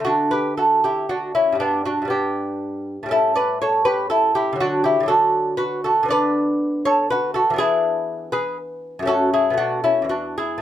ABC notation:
X:1
M:3/4
L:1/16
Q:1/4=120
K:D
V:1 name="Lute"
[DF]2 [GB]2 [FA]2 [EG]2 [DF]2 [CE]2 | [B,D]2 [DF]2 [DG]6- [DG] z | [EA]2 [Bd]2 [Ac]2 [GB]2 [EA]2 [EG]2 | [DF]2 [EG]2 [FA]4 [FB]2 [FA]2 |
[K:Bdor] [Bd]6 [Ac]2 [FB]2 [FA]2 | [EG]6 [GB]2 z4 | [FA]2 [EG]2 [DF]2 [CE]2 [DF]2 [EG]2 |]
V:2 name="Lute" clef=bass
[D,A,]12 | [G,,G,]4 [G,,G,B,]8 | [A,,G,C]12 | [D,F,]4 [D,F,D]8 |
[K:Bdor] [D,B,D]12 | [E,B,D]12 | [F,,A,C]4 [B,,A,]4 [E,,E,]4 |]